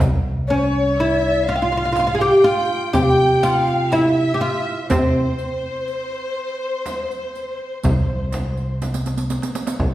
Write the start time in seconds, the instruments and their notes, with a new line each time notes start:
0.00 analog synth bass C2, riq, darbuka dum
0.47 oud C#4, ney C#5, violin section C#5
0.54 ney C5
0.63 ney C#5
0.96 oud E4, violin section E5
1.46 oud F4, violin section F5, ney F5
1.56 oud F4, ney G5
1.62 oud F4, ney F5
1.72 oud F4
1.77 oud F4
1.85 oud F4
1.93 oud F4, riq, darbuka tek, frame drum
1.99 oud F4
2.07 oud F4
2.15 oud G#4
2.20 oud G4, violin section G5, riq
2.44 oud F4, riq
2.93 analog synth bass C3, oud G4, violin section G5, ney G5, riq, darbuka dum, frame drum
3.03 ney F5
3.10 ney G5
3.42 oud F4, violin section F5, riq, darbuka tek, frame drum
3.67 riq, darbuka ka
3.89 oud E4, violin section E5, riq, darbuka tek, frame drum
3.94 ney E5
4.02 ney F5
4.07 ney E5
4.34 oud G4
4.41 oud F4
4.86 oud C4, violin section C5, riq
4.91 analog synth bass C3, ney C5, darbuka dum, frame drum
5.38 riq, darbuka ka
5.88 riq
6.39 darbuka ka
6.86 riq, frame drum
7.11 riq
7.35 riq, darbuka ka
7.83 analog synth bass C2, riq, darbuka dum, frame drum
8.32 riq, darbuka tek, frame drum
8.57 riq, darbuka ka
8.82 riq, darbuka tek, frame drum
8.94 riq, darbuka ka
9.06 riq, darbuka tek
9.17 riq, darbuka ka
9.30 riq, darbuka tek
9.42 riq, darbuka ka
9.55 riq, darbuka tek
9.67 riq, darbuka ka
9.80 analog synth bass C2, frame drum